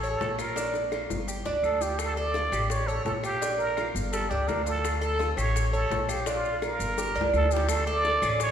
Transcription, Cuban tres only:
0.03 C#5
0.38 F4
0.56 D4
0.92 F4
1.28 G4
1.46 D4
1.81 F4
2.17 A4
2.35 F4
2.52 G4
2.88 C#5
3.23 F4
3.42 D4
3.77 F4
4.13 G4
4.31 D4
4.66 F4
5.01 A4
5.19 F4
5.37 G4
5.73 C#5
6.09 F4
6.27 D4
6.62 F4
6.98 G4
7.15 D4
7.52 F4
7.87 A4
8.23 C#4

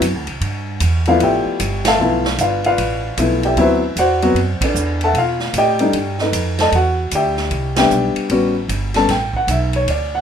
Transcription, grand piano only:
1.08 F3 A3 B3 E4 F4 B4 D5 F5
1.23 G4 D5 E5 G5
1.88 A4 E5 F5 A5
2.00 F3 A3 B3 E4
2.41 F4 B4 D5 F5
2.66 F4 B4 D5 F5
3.19 F3 A3 B3 E4
3.45 G4 D5 E5 G5
3.57 F#3 B3 C4 E4 B4 C5 E5
3.99 F#4 C5 D5 F#5
4.23 F#3 B3 C4 F#4
4.64 D4 A4 B4 D5
5.04 A4 E5 F#5 A5
5.18 F4 F5
5.58 G4 D5 D#5 G5
5.80 G3 A3 D4 D#4
6.21 D#4 A4 B4 D#5
6.61 A4 D5 D#5 A5
6.75 F#4 F#5
7.15 G4 D5 E5 G5
7.77 G3 B3 D4 G4 D5 E5 G5
8.31 G3 B3 C#4 F#4
8.96 G3 B3 C#4 A4 A5
9.11 G5
9.36 F#5
9.51 E5
9.76 C#5
9.90 D5
10.15 F#5

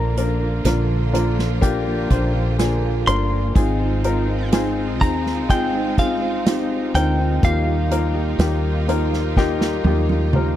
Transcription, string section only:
Already playing: D3 F3 A#3 F4
3.56 G#3 C4 D#4 F4
7.44 G3 A#3 F4

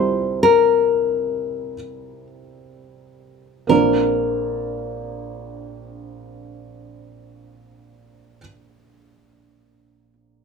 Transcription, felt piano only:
Already playing: C2 C3 G3 C4 E4 A#4
3.67 A#1 A#3 C4 D4 A#4

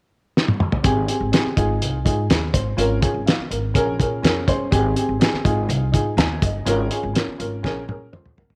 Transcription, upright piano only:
0.83 C4 G4 G#4
1.08 C4 G4 G#4
1.32 C4 G4 G#4
1.56 D#4 F4 G#4
2.05 D#4 F4 G#4
2.30 G#4
2.54 C5
2.77 C#4 F4 A#4
3.01 C#4 F4 G#4
3.26 F5
3.50 A#4
3.74 C#4 G#4 A#4
3.98 C#4 G#4 A#4
4.22 C#4 G#4 A#4
4.47 C#4 G#4 C5
4.71 C4 G4 G#4
4.96 C4 G4 G#4
5.19 C4 G4 G#4
5.44 D#4 F4 G#4
5.92 D#4 F4 G#4
6.18 G#5
6.43 D#5
6.65 C#4 F4 A#4
6.89 C#4 F4 G#4
7.14 C#4 F4 A#4
7.38 C#4 F4 A#4
7.63 C#4 G#4 A#4
7.88 C#4 G#4 A#4
8.13 C5
8.37 A#4

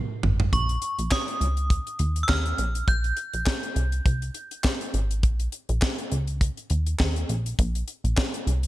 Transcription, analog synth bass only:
0.23 G#1
0.53 A#1
0.99 A#1
1.41 C#2
2.00 D#2
2.29 D#2
2.58 A#1
2.88 A#1
3.34 A#1
3.76 C2
4.06 C2
4.94 G#1
5.23 A#1
5.69 A#1
6.12 C#2
6.70 D#2
7.00 D#2
7.29 A#1
7.59 A#1
8.04 A#1
8.47 C2

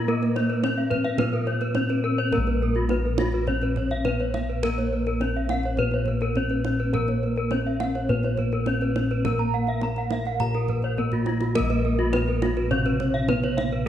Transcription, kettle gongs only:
Already playing: A#2
0.08 A#4
0.62 B3
1.18 A#2
1.75 B3
2.32 A#4
2.38 A#1
2.91 B3
4.06 B3
4.63 A#4
5.20 B3
5.78 A#2
6.36 B3
6.93 A#4
7.52 B3
8.09 A#2
8.67 B3
9.25 A#4
9.82 B3
10.40 A#2
10.98 B3
11.55 A#4
11.60 A#1
12.13 B3
13.28 B3

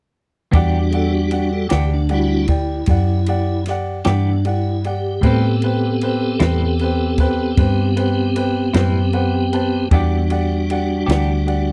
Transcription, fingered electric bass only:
0.54 E2
1.72 D2
2.88 F#2
4.06 G2
5.23 A2
6.40 E2
7.58 G2
8.74 F#2
9.92 E2
11.08 D2

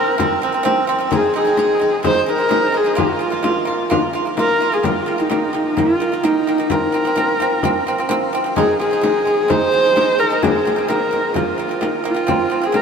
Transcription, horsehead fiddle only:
Already playing: A#4
1.12 G#4
1.36 G#4
2.06 C5
2.21 C5
2.30 A#4
2.78 G#4
2.99 F4
4.41 A#4
4.74 G#4
4.86 F4
5.21 D#4
5.33 D#4
5.79 F4
6.24 D#4
6.71 A#4
8.56 G#4
8.79 G#4
9.50 C5
10.20 A#4
10.43 G#4
10.89 A#4
11.37 F4
12.08 F4
12.66 G#4
12.76 A#4

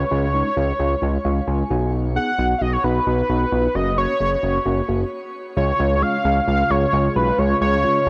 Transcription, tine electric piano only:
0.11 G#3 C#4 F4
0.34 G#3 C#4 D#4
0.57 G#3 C#4 F4
0.79 G#3 C#4 F4
1.02 G#3 C#4 F4
1.25 G#3 C#4 F4 F5
1.48 G#3 C#4 F4 G#5
1.70 B3 D#4 F#4 G#5
2.16 B3 D#4 G#4
2.39 B3 D#4 F#4
2.61 B3 D#4 F#4
2.84 B3 D#4 F#4
3.07 B3 D#4 F#4
3.30 B3 D#4 F#4
3.52 B3 D#4 F4
3.75 A#3 C#4 F#4
3.98 A#3 C#4 F#4
4.20 A#3 C#4 G#4
4.43 A#3 C#4 F#4
4.66 A#3 C#4 F#4
4.89 A#3 C#4 F#4
5.57 G#3 C#4 F4
5.79 G#3 C#4 F4
6.02 G#3 C#4 F4
6.25 G#3 C#4 F4
6.48 G#3 C#4 F4
6.70 G#3 C#4 F4
6.93 G#3 C#4 F4
7.16 G#3 C#4 F4
7.39 G#3 C#4 F4
7.61 G#3 C#4 F4
7.84 G#3 C#4 F4

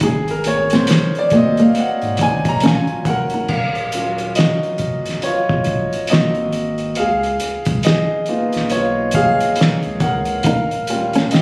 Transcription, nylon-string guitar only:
0.03 D#4
0.46 muted nylon-string guitar stroke
0.73 C4
0.89 muted nylon-string guitar stroke
1.33 A#3
1.60 A#3
2.21 D#4
2.63 C#4
3.08 muted nylon-string guitar stroke
3.34 D#4
10.46 D#4
10.90 muted nylon-string guitar stroke
11.15 C#4
11.32 muted nylon-string guitar stroke

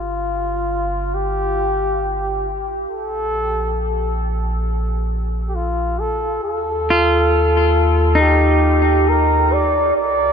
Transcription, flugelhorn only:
Already playing: F4
1.15 G4
2.90 A4
5.48 G4
5.55 F4
5.99 A4
6.44 A4
8.20 G4
9.09 A#4
9.52 D5
9.96 D5

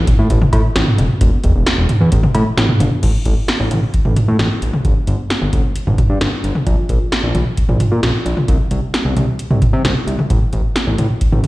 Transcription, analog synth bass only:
0.19 A2
0.30 A1
0.53 A2
0.76 A1
0.99 F1
1.21 E1
1.44 E1
1.55 E1
1.78 E1
2.01 E2
2.12 A1
2.35 A2
2.58 A1
2.80 G1
3.03 A1
3.26 A1
3.60 A1
3.71 A1
4.05 A1
4.28 A2
4.39 A1
4.62 A1
4.85 G1
5.08 G1
5.42 G1
5.53 G1
5.87 G1
6.10 G2
6.21 G1
6.44 G1
6.67 A#1
6.89 A#1
7.23 A#1
7.35 A#1
7.69 A#1
7.92 A#2
8.03 A#1
8.26 A#1
8.48 C2
8.71 C2
9.05 C2
9.16 C2
9.51 C2
9.73 C3
9.85 C2
10.07 C2
10.30 A1
10.53 A1
10.87 A1
10.98 A1
11.32 A1

